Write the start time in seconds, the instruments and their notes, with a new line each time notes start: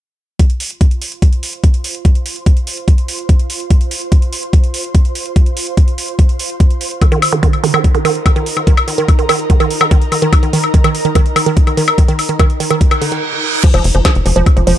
0.39 ambient pad F4, kick, closed hi-hat
0.50 closed hi-hat
0.55 ambient pad C6
0.60 open hi-hat
0.70 closed hi-hat
0.79 ambient pad C5, kick, closed hi-hat
0.91 closed hi-hat
1.02 open hi-hat
1.12 closed hi-hat
1.22 kick, closed hi-hat
1.33 closed hi-hat
1.43 open hi-hat
1.53 closed hi-hat
1.64 kick, closed hi-hat
1.74 closed hi-hat
1.84 open hi-hat
1.95 closed hi-hat
2.05 kick, closed hi-hat
2.15 closed hi-hat
2.26 open hi-hat
2.36 closed hi-hat
2.46 kick, closed hi-hat
2.57 closed hi-hat
2.67 open hi-hat
2.77 closed hi-hat
2.88 kick, closed hi-hat
2.98 closed hi-hat
3.08 open hi-hat
3.19 closed hi-hat
3.29 kick, closed hi-hat
3.39 closed hi-hat
3.50 open hi-hat
3.60 closed hi-hat
3.70 kick, closed hi-hat
3.81 closed hi-hat
3.91 open hi-hat
4.01 closed hi-hat
4.12 kick, closed hi-hat
4.22 closed hi-hat
4.33 open hi-hat
4.43 closed hi-hat
4.53 kick, closed hi-hat
4.64 closed hi-hat
4.74 open hi-hat
4.84 closed hi-hat
4.95 kick, closed hi-hat
5.05 closed hi-hat
5.15 open hi-hat
5.26 closed hi-hat
5.36 kick, closed hi-hat
5.46 closed hi-hat
5.57 open hi-hat
5.67 closed hi-hat
5.77 kick, closed hi-hat
5.88 closed hi-hat
5.98 open hi-hat
6.08 closed hi-hat
6.19 kick, closed hi-hat
6.29 closed hi-hat
6.39 open hi-hat
6.50 closed hi-hat
6.60 kick, closed hi-hat
6.70 closed hi-hat
6.81 open hi-hat
6.91 closed hi-hat
7.02 synth arpeggio sound D#3, ambient pad D#4, kick, closed hi-hat, high woodblock
7.12 synth arpeggio sound D#3, ambient pad A#4, closed hi-hat
7.22 ambient pad A#5, open hi-hat, high woodblock
7.33 synth arpeggio sound D#3, closed hi-hat
7.43 synth arpeggio sound D#3, kick, closed hi-hat
7.53 closed hi-hat, high woodblock
7.64 synth arpeggio sound D#3, open hi-hat
7.74 synth arpeggio sound D#3, high woodblock
7.84 kick, closed hi-hat
7.95 synth arpeggio sound D#3, closed hi-hat
8.05 synth arpeggio sound D#3, open hi-hat, high woodblock
8.15 closed hi-hat
8.26 synth arpeggio sound D#3, kick, closed hi-hat, high woodblock
8.36 synth arpeggio sound D#3, closed hi-hat
8.46 open hi-hat
8.57 synth arpeggio sound D#3, closed hi-hat, high woodblock
8.67 synth arpeggio sound D#3, kick, closed hi-hat
8.77 closed hi-hat, high woodblock
8.88 synth arpeggio sound D#3, open hi-hat
8.98 synth arpeggio sound D#3, closed hi-hat
9.08 kick, closed hi-hat, high woodblock
9.19 synth arpeggio sound D#3, closed hi-hat
9.29 synth arpeggio sound D#3, open hi-hat, high woodblock
9.39 closed hi-hat
9.50 synth arpeggio sound D#3, kick, closed hi-hat
9.60 synth arpeggio sound D#3, closed hi-hat, high woodblock
9.71 open hi-hat
9.81 synth arpeggio sound D#3, closed hi-hat, high woodblock
9.91 synth arpeggio sound D#3, kick, closed hi-hat
10.02 closed hi-hat
10.12 synth arpeggio sound D#3, open hi-hat, high woodblock
10.22 synth arpeggio sound D#3, closed hi-hat
10.33 kick, closed hi-hat, high woodblock
10.43 synth arpeggio sound D#3, closed hi-hat
10.53 synth arpeggio sound D#3, open hi-hat
10.64 closed hi-hat, high woodblock
10.74 synth arpeggio sound D#3, kick, closed hi-hat
10.84 synth arpeggio sound D#3, closed hi-hat, high woodblock
10.95 open hi-hat
11.05 synth arpeggio sound D#3, closed hi-hat
11.15 synth arpeggio sound D#3, kick, closed hi-hat, high woodblock
11.26 closed hi-hat
11.36 synth arpeggio sound D#3, open hi-hat, high woodblock
11.46 synth arpeggio sound D#3, closed hi-hat
11.57 kick, closed hi-hat
11.67 synth arpeggio sound D#3, closed hi-hat, high woodblock
11.77 synth arpeggio sound D#3, open hi-hat
11.88 high woodblock
11.98 synth arpeggio sound D#3, kick, closed hi-hat
12.08 synth arpeggio sound D#3, closed hi-hat
12.19 open hi-hat, high woodblock
12.29 synth arpeggio sound D#3, closed hi-hat
12.39 synth arpeggio sound D#3, kick, closed hi-hat, high woodblock
12.50 closed hi-hat
12.60 synth arpeggio sound D#3, open hi-hat
12.71 synth arpeggio sound D#3, closed hi-hat, high woodblock
12.81 kick, closed hi-hat, reverse cymbal
12.91 synth arpeggio sound D#3, closed hi-hat, high woodblock
13.02 synth arpeggio sound D3, open hi-hat
13.12 synth arpeggio sound D#3, closed hi-hat
13.64 synth arpeggio sound F3, ambient pad F4, kick, closed hi-hat, crash
13.74 analog synth bass F1, synth arpeggio sound F3, closed hi-hat, high woodblock
13.82 analog synth bass F1, ambient pad C5, open hi-hat
13.95 analog synth bass F#1, synth arpeggio sound F3, closed hi-hat
14.05 synth arpeggio sound F3, kick, snare, closed hi-hat, high woodblock
14.15 analog synth bass F1, closed hi-hat
14.26 analog synth bass F1, synth arpeggio sound F3, open hi-hat
14.30 ambient pad C6
14.36 analog synth bass F1, synth arpeggio sound F3, closed hi-hat
14.46 kick, closed hi-hat, high woodblock
14.57 analog synth bass F1, synth arpeggio sound F3, closed hi-hat
14.67 analog synth bass F1, synth arpeggio sound F3, open hi-hat